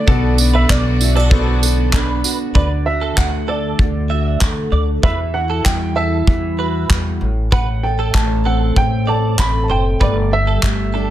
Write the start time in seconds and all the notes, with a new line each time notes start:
Already playing: D3 A3 E4 F#4 A4 D5
0.07 B1 D3 B3 F#4 A4 D5, kick
0.38 D4, tambourine
0.54 B4 E5
0.69 B1 D4 D5, kick, clap
1.01 E4, tambourine
1.16 F#4 A4 D5
1.30 B3 F#4 A4 C5, kick
1.39 D5
1.63 A4, tambourine
1.93 D4 B4, kick, clap
2.24 F#4, tambourine
2.55 D2 D3 B4 D5, kick
2.86 F#4 E5
3.01 A4
3.17 D2 A3 F#5, kick, clap
3.48 D4 A4 D5
3.79 D2 D3, kick
4.10 F#4 E5
4.41 D2 A3, kick, clap
4.72 D2 D5
5.03 E2 E3 B4 E5, kick
5.34 F#4 F#5
5.50 A4
5.64 E2 G3 G5, kick, clap
5.96 E4 A4 E5
6.27 E2 E3, kick
6.59 F#4 B4
6.90 E2 G3, kick, clap
7.21 A1 A2
7.52 A2 B4 F#5, kick
7.83 A4 G5
7.99 A4
8.14 A1 A3 A5, kick, clap
8.45 C4 A4 F#5
8.76 A1 A2 G5, kick
9.07 A4 D5 A5
9.39 A1 B5, kick, clap
9.64 A5
9.70 F#1 C5 G5
10.00 G1 G3 B4 D5, kick
10.31 G4 E5
10.47 A4
10.63 G1 A3, kick, clap
10.94 D4 A4